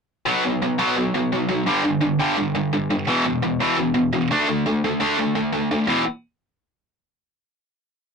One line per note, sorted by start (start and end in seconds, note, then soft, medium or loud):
0.26 0.43 B2 medium
0.26 0.43 F#3 medium
0.26 0.43 B3 medium
0.44 0.60 B2 medium
0.44 0.60 F#3 medium
0.62 0.77 B2 medium
0.62 0.78 F#3 medium
0.78 0.95 B2 medium
0.78 0.96 F#3 medium
0.78 0.96 B3 medium
0.96 1.12 B2 medium
0.96 1.13 F#3 medium
1.14 1.30 B2 medium
1.14 1.30 F#3 medium
1.32 1.47 B2 medium
1.32 1.48 F#3 medium
1.49 1.65 B2 medium
1.49 1.65 F#3 medium
1.66 1.82 G2 medium
1.66 1.82 D3 medium
1.66 1.84 G3 medium
1.83 2.00 G2 medium
1.83 2.00 D3 medium
2.01 2.17 G2 medium
2.01 2.17 D3 medium
2.19 2.36 G2 medium
2.19 2.36 D3 medium
2.19 2.36 G3 medium
2.37 2.53 G2 medium
2.37 2.54 D3 medium
2.55 2.71 G2 medium
2.55 2.71 D3 medium
2.73 2.89 G2 medium
2.73 2.89 D3 medium
2.90 3.06 G2 medium
2.90 3.06 D3 medium
3.07 3.24 E2 medium
3.07 3.24 B2 medium
3.07 3.24 E3 medium
3.26 3.41 E2 medium
3.26 3.41 B2 medium
3.43 3.58 E2 medium
3.43 3.59 B2 medium
3.60 3.76 E2 medium
3.60 3.77 B2 medium
3.60 3.78 E3 medium
3.77 3.93 E2 medium
3.77 3.93 B2 medium
3.94 4.11 E2 medium
3.94 4.11 B2 medium
4.13 4.29 E2 medium
4.13 4.29 B2 medium
4.31 4.47 D3 medium
4.31 4.48 A3 medium
4.31 4.48 D4 medium
4.48 4.64 D3 medium
4.48 4.64 A3 medium
4.66 4.82 D3 medium
4.66 4.82 A3 medium
4.84 4.99 D3 medium
4.84 5.00 A3 medium
5.00 5.17 D3 medium
5.00 5.18 A3 medium
5.00 5.18 D4 medium
5.18 5.34 D3 medium
5.18 5.34 A3 medium
5.35 5.51 D3 medium
5.35 5.52 A3 medium
5.53 5.69 D3 medium
5.53 5.69 A3 medium
5.71 5.87 D3 medium
5.71 5.87 A3 medium
5.87 6.02 E2 medium
5.87 6.02 B2 medium
5.87 6.03 E3 loud